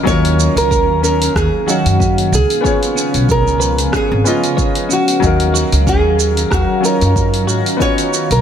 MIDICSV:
0, 0, Header, 1, 7, 480
1, 0, Start_track
1, 0, Key_signature, -6, "minor"
1, 0, Tempo, 645161
1, 48, Time_signature, 4, 2, 24, 8
1, 6260, End_track
2, 0, Start_track
2, 0, Title_t, "Nylon-string guitar"
2, 0, Program_c, 0, 24
2, 53, Note_on_c, 0, 73, 120
2, 427, Note_off_c, 0, 73, 0
2, 430, Note_on_c, 0, 70, 107
2, 765, Note_off_c, 0, 70, 0
2, 774, Note_on_c, 0, 70, 92
2, 994, Note_off_c, 0, 70, 0
2, 1021, Note_on_c, 0, 68, 104
2, 1261, Note_off_c, 0, 68, 0
2, 1265, Note_on_c, 0, 66, 92
2, 1747, Note_on_c, 0, 68, 100
2, 1750, Note_off_c, 0, 66, 0
2, 2427, Note_off_c, 0, 68, 0
2, 2465, Note_on_c, 0, 70, 100
2, 2945, Note_off_c, 0, 70, 0
2, 2948, Note_on_c, 0, 68, 104
2, 3162, Note_off_c, 0, 68, 0
2, 3188, Note_on_c, 0, 65, 88
2, 3665, Note_off_c, 0, 65, 0
2, 3668, Note_on_c, 0, 66, 96
2, 4382, Note_on_c, 0, 68, 93
2, 4399, Note_off_c, 0, 66, 0
2, 4866, Note_on_c, 0, 66, 101
2, 4869, Note_off_c, 0, 68, 0
2, 5080, Note_off_c, 0, 66, 0
2, 5098, Note_on_c, 0, 70, 81
2, 5543, Note_off_c, 0, 70, 0
2, 5816, Note_on_c, 0, 73, 117
2, 6189, Note_off_c, 0, 73, 0
2, 6192, Note_on_c, 0, 70, 95
2, 6260, Note_off_c, 0, 70, 0
2, 6260, End_track
3, 0, Start_track
3, 0, Title_t, "Grand piano"
3, 0, Program_c, 1, 0
3, 0, Control_c, 1, 64, 127
3, 25, Note_on_c, 1, 54, 92
3, 38, Note_on_c, 1, 61, 88
3, 49, Note_on_c, 1, 63, 83
3, 56, Control_c, 1, 64, 0
3, 61, Note_on_c, 1, 65, 83
3, 72, Note_on_c, 1, 70, 107
3, 207, Control_c, 1, 64, 127
3, 1210, Note_off_c, 1, 54, 0
3, 1217, Note_off_c, 1, 61, 0
3, 1222, Note_off_c, 1, 63, 0
3, 1228, Note_off_c, 1, 65, 0
3, 1234, Note_off_c, 1, 70, 0
3, 1238, Note_on_c, 1, 54, 84
3, 1244, Note_on_c, 1, 61, 80
3, 1251, Note_on_c, 1, 63, 76
3, 1255, Note_on_c, 1, 77, 77
3, 1263, Note_on_c, 1, 73, 88
3, 1710, Note_off_c, 1, 54, 0
3, 1713, Note_off_c, 1, 61, 0
3, 1717, Note_off_c, 1, 63, 0
3, 1718, Note_off_c, 1, 77, 0
3, 1722, Note_off_c, 1, 73, 0
3, 1736, Control_c, 1, 64, 0
3, 1875, Control_c, 1, 64, 127
3, 1941, Note_on_c, 1, 59, 92
3, 1952, Note_on_c, 1, 61, 84
3, 1967, Note_on_c, 1, 65, 83
3, 1977, Note_on_c, 1, 68, 84
3, 1989, Note_on_c, 1, 73, 106
3, 3129, Note_off_c, 1, 59, 0
3, 3134, Note_off_c, 1, 61, 0
3, 3142, Note_off_c, 1, 65, 0
3, 3147, Note_off_c, 1, 68, 0
3, 3153, Note_off_c, 1, 73, 0
3, 3156, Note_on_c, 1, 59, 89
3, 3160, Note_on_c, 1, 61, 79
3, 3170, Note_on_c, 1, 65, 84
3, 3175, Note_on_c, 1, 68, 83
3, 3181, Note_on_c, 1, 75, 89
3, 3629, Note_off_c, 1, 59, 0
3, 3631, Note_off_c, 1, 61, 0
3, 3636, Note_off_c, 1, 65, 0
3, 3638, Note_off_c, 1, 68, 0
3, 3641, Note_off_c, 1, 75, 0
3, 3656, Control_c, 1, 64, 0
3, 3801, Control_c, 1, 64, 127
3, 3867, Note_on_c, 1, 54, 97
3, 3881, Note_on_c, 1, 61, 80
3, 3893, Note_on_c, 1, 63, 92
3, 3906, Note_on_c, 1, 77, 89
3, 3918, Note_on_c, 1, 70, 104
3, 5052, Note_off_c, 1, 54, 0
3, 5059, Note_off_c, 1, 61, 0
3, 5063, Note_on_c, 1, 54, 87
3, 5065, Note_off_c, 1, 63, 0
3, 5071, Note_off_c, 1, 77, 0
3, 5075, Note_on_c, 1, 61, 78
3, 5077, Note_off_c, 1, 70, 0
3, 5090, Note_on_c, 1, 63, 81
3, 5099, Note_on_c, 1, 65, 79
3, 5114, Note_on_c, 1, 73, 95
3, 5770, Note_off_c, 1, 54, 0
3, 5776, Note_off_c, 1, 61, 0
3, 5779, Note_off_c, 1, 63, 0
3, 5780, Note_on_c, 1, 59, 94
3, 5787, Note_off_c, 1, 65, 0
3, 5790, Note_on_c, 1, 63, 88
3, 5795, Note_off_c, 1, 73, 0
3, 5802, Note_on_c, 1, 65, 84
3, 5815, Note_on_c, 1, 66, 89
3, 5818, Control_c, 1, 64, 0
3, 5828, Note_on_c, 1, 73, 104
3, 5946, Control_c, 1, 64, 127
3, 6260, Note_off_c, 1, 59, 0
3, 6260, Note_off_c, 1, 63, 0
3, 6260, Note_off_c, 1, 65, 0
3, 6260, Note_off_c, 1, 66, 0
3, 6260, Note_off_c, 1, 73, 0
3, 6260, End_track
4, 0, Start_track
4, 0, Title_t, "Clean electric guitar"
4, 0, Program_c, 2, 27
4, 41, Note_on_c, 2, 61, 107
4, 263, Note_off_c, 2, 61, 0
4, 527, Note_on_c, 2, 70, 76
4, 746, Note_off_c, 2, 70, 0
4, 766, Note_on_c, 2, 61, 99
4, 985, Note_off_c, 2, 61, 0
4, 1247, Note_on_c, 2, 66, 94
4, 1466, Note_off_c, 2, 66, 0
4, 1484, Note_on_c, 2, 61, 101
4, 1704, Note_off_c, 2, 61, 0
4, 1963, Note_on_c, 2, 73, 84
4, 2184, Note_off_c, 2, 73, 0
4, 2200, Note_on_c, 2, 61, 102
4, 2423, Note_off_c, 2, 61, 0
4, 2677, Note_on_c, 2, 71, 94
4, 2901, Note_off_c, 2, 71, 0
4, 2919, Note_on_c, 2, 61, 107
4, 3142, Note_off_c, 2, 61, 0
4, 3399, Note_on_c, 2, 73, 77
4, 3622, Note_off_c, 2, 73, 0
4, 3638, Note_on_c, 2, 61, 102
4, 3861, Note_off_c, 2, 61, 0
4, 4121, Note_on_c, 2, 66, 99
4, 4343, Note_off_c, 2, 66, 0
4, 4366, Note_on_c, 2, 61, 101
4, 4586, Note_off_c, 2, 61, 0
4, 4840, Note_on_c, 2, 70, 83
4, 5063, Note_off_c, 2, 70, 0
4, 5081, Note_on_c, 2, 61, 98
4, 5303, Note_off_c, 2, 61, 0
4, 5560, Note_on_c, 2, 66, 95
4, 5782, Note_off_c, 2, 66, 0
4, 5800, Note_on_c, 2, 61, 106
4, 6023, Note_off_c, 2, 61, 0
4, 6260, End_track
5, 0, Start_track
5, 0, Title_t, "Ambient pad"
5, 0, Program_c, 3, 92
5, 53, Note_on_c, 3, 77, 86
5, 54, Note_on_c, 3, 58, 72
5, 55, Note_on_c, 3, 61, 78
5, 56, Note_on_c, 3, 51, 78
5, 56, Note_on_c, 3, 54, 72
5, 1714, Note_off_c, 3, 58, 0
5, 1715, Note_off_c, 3, 51, 0
5, 1715, Note_off_c, 3, 54, 0
5, 1715, Note_off_c, 3, 61, 0
5, 1730, Note_on_c, 3, 53, 72
5, 1731, Note_on_c, 3, 56, 70
5, 1731, Note_on_c, 3, 59, 73
5, 1732, Note_on_c, 3, 49, 77
5, 3629, Note_off_c, 3, 53, 0
5, 3630, Note_off_c, 3, 56, 0
5, 3630, Note_off_c, 3, 59, 0
5, 3631, Note_off_c, 3, 49, 0
5, 3645, Note_on_c, 3, 54, 73
5, 3646, Note_on_c, 3, 61, 72
5, 3646, Note_on_c, 3, 82, 72
5, 3648, Note_on_c, 3, 51, 74
5, 5785, Note_off_c, 3, 54, 0
5, 5785, Note_off_c, 3, 61, 0
5, 5814, Note_on_c, 3, 59, 72
5, 5815, Note_on_c, 3, 61, 76
5, 6260, Note_off_c, 3, 51, 0
5, 6260, Note_off_c, 3, 59, 0
5, 6260, Note_off_c, 3, 61, 0
5, 6260, Note_off_c, 3, 77, 0
5, 6260, Note_off_c, 3, 82, 0
5, 6260, End_track
6, 0, Start_track
6, 0, Title_t, "Upright bass"
6, 0, Program_c, 4, 32
6, 49, Note_on_c, 4, 39, 99
6, 349, Note_off_c, 4, 39, 0
6, 420, Note_on_c, 4, 37, 88
6, 661, Note_off_c, 4, 37, 0
6, 661, Note_on_c, 4, 39, 103
6, 950, Note_off_c, 4, 39, 0
6, 1009, Note_on_c, 4, 39, 86
6, 1096, Note_off_c, 4, 39, 0
6, 1383, Note_on_c, 4, 42, 87
6, 1729, Note_on_c, 4, 37, 98
6, 1740, Note_off_c, 4, 42, 0
6, 1816, Note_off_c, 4, 37, 0
6, 2340, Note_on_c, 4, 35, 88
6, 2582, Note_off_c, 4, 35, 0
6, 2582, Note_on_c, 4, 37, 93
6, 2870, Note_off_c, 4, 37, 0
6, 3061, Note_on_c, 4, 32, 99
6, 3131, Note_off_c, 4, 32, 0
6, 3887, Note_on_c, 4, 39, 99
6, 4188, Note_off_c, 4, 39, 0
6, 4259, Note_on_c, 4, 37, 92
6, 4500, Note_off_c, 4, 37, 0
6, 4500, Note_on_c, 4, 39, 93
6, 4789, Note_off_c, 4, 39, 0
6, 4848, Note_on_c, 4, 39, 91
6, 4936, Note_off_c, 4, 39, 0
6, 5222, Note_on_c, 4, 42, 94
6, 5569, Note_off_c, 4, 42, 0
6, 5569, Note_on_c, 4, 44, 99
6, 5656, Note_off_c, 4, 44, 0
6, 6179, Note_on_c, 4, 35, 89
6, 6250, Note_off_c, 4, 35, 0
6, 6260, End_track
7, 0, Start_track
7, 0, Title_t, "Drums"
7, 48, Note_on_c, 9, 36, 105
7, 59, Note_on_c, 9, 82, 43
7, 123, Note_off_c, 9, 36, 0
7, 134, Note_off_c, 9, 82, 0
7, 185, Note_on_c, 9, 46, 47
7, 260, Note_off_c, 9, 46, 0
7, 296, Note_on_c, 9, 82, 76
7, 370, Note_off_c, 9, 82, 0
7, 425, Note_on_c, 9, 46, 56
7, 432, Note_on_c, 9, 82, 34
7, 500, Note_off_c, 9, 46, 0
7, 507, Note_off_c, 9, 82, 0
7, 529, Note_on_c, 9, 36, 99
7, 536, Note_on_c, 9, 82, 42
7, 603, Note_off_c, 9, 36, 0
7, 610, Note_off_c, 9, 82, 0
7, 776, Note_on_c, 9, 82, 77
7, 851, Note_off_c, 9, 82, 0
7, 905, Note_on_c, 9, 46, 57
7, 912, Note_on_c, 9, 82, 32
7, 979, Note_off_c, 9, 46, 0
7, 986, Note_off_c, 9, 82, 0
7, 1010, Note_on_c, 9, 36, 113
7, 1012, Note_on_c, 9, 37, 77
7, 1019, Note_on_c, 9, 82, 46
7, 1085, Note_off_c, 9, 36, 0
7, 1086, Note_off_c, 9, 37, 0
7, 1093, Note_off_c, 9, 82, 0
7, 1256, Note_on_c, 9, 82, 79
7, 1330, Note_off_c, 9, 82, 0
7, 1383, Note_on_c, 9, 46, 58
7, 1390, Note_on_c, 9, 82, 35
7, 1458, Note_off_c, 9, 46, 0
7, 1465, Note_off_c, 9, 82, 0
7, 1490, Note_on_c, 9, 36, 100
7, 1500, Note_on_c, 9, 82, 46
7, 1564, Note_off_c, 9, 36, 0
7, 1575, Note_off_c, 9, 82, 0
7, 1623, Note_on_c, 9, 46, 47
7, 1698, Note_off_c, 9, 46, 0
7, 1736, Note_on_c, 9, 82, 76
7, 1811, Note_off_c, 9, 82, 0
7, 1862, Note_on_c, 9, 46, 60
7, 1869, Note_on_c, 9, 82, 35
7, 1937, Note_off_c, 9, 46, 0
7, 1943, Note_off_c, 9, 82, 0
7, 1969, Note_on_c, 9, 36, 103
7, 1976, Note_on_c, 9, 82, 46
7, 2044, Note_off_c, 9, 36, 0
7, 2050, Note_off_c, 9, 82, 0
7, 2103, Note_on_c, 9, 46, 45
7, 2110, Note_on_c, 9, 82, 34
7, 2177, Note_off_c, 9, 46, 0
7, 2184, Note_off_c, 9, 82, 0
7, 2214, Note_on_c, 9, 82, 84
7, 2289, Note_off_c, 9, 82, 0
7, 2338, Note_on_c, 9, 46, 57
7, 2344, Note_on_c, 9, 82, 35
7, 2412, Note_off_c, 9, 46, 0
7, 2419, Note_off_c, 9, 82, 0
7, 2448, Note_on_c, 9, 36, 104
7, 2450, Note_on_c, 9, 82, 42
7, 2522, Note_off_c, 9, 36, 0
7, 2525, Note_off_c, 9, 82, 0
7, 2585, Note_on_c, 9, 82, 31
7, 2659, Note_off_c, 9, 82, 0
7, 2689, Note_on_c, 9, 82, 76
7, 2764, Note_off_c, 9, 82, 0
7, 2816, Note_on_c, 9, 46, 53
7, 2823, Note_on_c, 9, 82, 32
7, 2890, Note_off_c, 9, 46, 0
7, 2897, Note_off_c, 9, 82, 0
7, 2923, Note_on_c, 9, 37, 79
7, 2928, Note_on_c, 9, 36, 104
7, 2930, Note_on_c, 9, 82, 47
7, 2998, Note_off_c, 9, 37, 0
7, 3002, Note_off_c, 9, 36, 0
7, 3004, Note_off_c, 9, 82, 0
7, 3170, Note_on_c, 9, 82, 81
7, 3245, Note_off_c, 9, 82, 0
7, 3300, Note_on_c, 9, 46, 54
7, 3307, Note_on_c, 9, 82, 34
7, 3375, Note_off_c, 9, 46, 0
7, 3381, Note_off_c, 9, 82, 0
7, 3407, Note_on_c, 9, 36, 107
7, 3411, Note_on_c, 9, 82, 45
7, 3481, Note_off_c, 9, 36, 0
7, 3485, Note_off_c, 9, 82, 0
7, 3537, Note_on_c, 9, 46, 46
7, 3611, Note_off_c, 9, 46, 0
7, 3651, Note_on_c, 9, 82, 80
7, 3725, Note_off_c, 9, 82, 0
7, 3780, Note_on_c, 9, 46, 62
7, 3786, Note_on_c, 9, 82, 36
7, 3854, Note_off_c, 9, 46, 0
7, 3861, Note_off_c, 9, 82, 0
7, 3887, Note_on_c, 9, 36, 105
7, 3893, Note_on_c, 9, 82, 48
7, 3961, Note_off_c, 9, 36, 0
7, 3967, Note_off_c, 9, 82, 0
7, 4017, Note_on_c, 9, 46, 44
7, 4091, Note_off_c, 9, 46, 0
7, 4133, Note_on_c, 9, 82, 84
7, 4207, Note_off_c, 9, 82, 0
7, 4259, Note_on_c, 9, 46, 56
7, 4266, Note_on_c, 9, 82, 36
7, 4333, Note_off_c, 9, 46, 0
7, 4340, Note_off_c, 9, 82, 0
7, 4367, Note_on_c, 9, 36, 105
7, 4371, Note_on_c, 9, 82, 45
7, 4441, Note_off_c, 9, 36, 0
7, 4445, Note_off_c, 9, 82, 0
7, 4611, Note_on_c, 9, 82, 82
7, 4685, Note_off_c, 9, 82, 0
7, 4741, Note_on_c, 9, 46, 51
7, 4748, Note_on_c, 9, 82, 34
7, 4815, Note_off_c, 9, 46, 0
7, 4822, Note_off_c, 9, 82, 0
7, 4847, Note_on_c, 9, 36, 116
7, 4847, Note_on_c, 9, 37, 73
7, 4854, Note_on_c, 9, 82, 47
7, 4921, Note_off_c, 9, 36, 0
7, 4922, Note_off_c, 9, 37, 0
7, 4929, Note_off_c, 9, 82, 0
7, 5093, Note_on_c, 9, 82, 82
7, 5168, Note_off_c, 9, 82, 0
7, 5219, Note_on_c, 9, 46, 53
7, 5225, Note_on_c, 9, 82, 35
7, 5293, Note_off_c, 9, 46, 0
7, 5300, Note_off_c, 9, 82, 0
7, 5326, Note_on_c, 9, 36, 112
7, 5333, Note_on_c, 9, 82, 48
7, 5401, Note_off_c, 9, 36, 0
7, 5407, Note_off_c, 9, 82, 0
7, 5458, Note_on_c, 9, 46, 46
7, 5533, Note_off_c, 9, 46, 0
7, 5571, Note_on_c, 9, 82, 81
7, 5646, Note_off_c, 9, 82, 0
7, 5701, Note_on_c, 9, 46, 57
7, 5708, Note_on_c, 9, 82, 39
7, 5776, Note_off_c, 9, 46, 0
7, 5783, Note_off_c, 9, 82, 0
7, 5806, Note_on_c, 9, 36, 104
7, 5811, Note_on_c, 9, 82, 46
7, 5881, Note_off_c, 9, 36, 0
7, 5886, Note_off_c, 9, 82, 0
7, 5938, Note_on_c, 9, 46, 46
7, 5945, Note_on_c, 9, 82, 35
7, 6012, Note_off_c, 9, 46, 0
7, 6019, Note_off_c, 9, 82, 0
7, 6053, Note_on_c, 9, 82, 87
7, 6128, Note_off_c, 9, 82, 0
7, 6182, Note_on_c, 9, 46, 55
7, 6188, Note_on_c, 9, 82, 36
7, 6256, Note_off_c, 9, 46, 0
7, 6260, Note_off_c, 9, 82, 0
7, 6260, End_track
0, 0, End_of_file